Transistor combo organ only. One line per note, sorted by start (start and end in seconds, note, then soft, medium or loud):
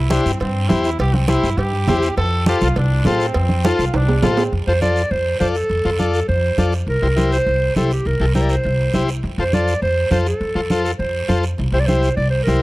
0.10 0.31 E4 medium
0.10 0.32 G4 medium
0.10 0.32 C5 medium
0.69 0.90 E4 medium
0.69 0.90 G4 medium
0.69 0.90 C5 medium
1.28 1.49 E4 medium
1.28 1.50 G4 medium
1.28 1.50 C5 medium
1.88 2.08 E4 medium
1.88 2.09 G4 medium
1.88 2.09 C5 loud
2.48 2.68 F4 medium
2.48 2.68 A4 medium
2.48 2.68 C5 medium
3.06 3.26 F4 medium
3.06 3.27 A4 medium
3.06 3.26 C5 medium
3.65 3.85 F4 medium
3.65 3.85 A4 medium
3.65 3.85 C5 medium
4.22 4.43 F4 medium
4.22 4.43 A4 medium
4.22 4.44 C5 medium
4.68 4.73 F4 medium
4.68 4.73 A4 medium
4.68 4.73 C5 medium
4.81 5.02 F4 medium
4.81 5.02 A4 medium
4.81 5.03 C5 medium
5.40 5.56 F4 medium
5.40 5.56 A4 medium
5.40 5.57 D5 medium
5.85 5.90 F4 medium
5.85 5.90 A4 medium
5.85 5.90 C5 medium
5.99 6.20 F4 medium
5.99 6.20 A4 medium
5.99 6.20 D5 medium
6.58 6.74 F4 medium
6.58 6.74 A4 medium
6.58 6.74 D5 medium
7.02 7.08 E4 medium
7.02 7.08 G4 medium
7.02 7.08 C5 medium
7.16 7.37 E4 medium
7.16 7.38 G4 medium
7.16 7.38 C5 medium
7.76 7.92 E4 medium
7.76 7.92 G4 medium
7.76 7.92 C5 medium
8.21 8.26 E4 medium
8.21 8.26 G4 medium
8.21 8.26 A4 medium
8.35 8.56 E4 medium
8.35 8.56 G4 medium
8.35 8.56 A#4 medium
8.94 9.09 E4 medium
8.94 9.10 G4 medium
8.94 9.10 C5 medium
9.39 9.44 F4 medium
9.39 9.44 A4 medium
9.39 9.44 C5 medium
9.54 9.74 F4 medium
9.54 9.74 A4 medium
9.54 9.74 C5 medium
10.11 10.27 F4 medium
10.11 10.27 A4 medium
10.11 10.27 C5 medium
10.55 10.61 F4 medium
10.55 10.61 A4 medium
10.55 10.61 C5 medium
10.71 10.91 F4 medium
10.71 10.91 A4 medium
10.71 10.92 C5 medium
11.28 11.44 F4 medium
11.28 11.45 A4 medium
11.28 11.45 C5 medium
11.73 11.79 E4 medium
11.73 11.79 G4 medium
11.73 11.79 C5 medium
11.88 12.09 E4 medium
11.88 12.09 G4 medium
11.88 12.10 C5 medium
12.48 12.62 E4 medium
12.48 12.62 G4 medium
12.48 12.62 C5 medium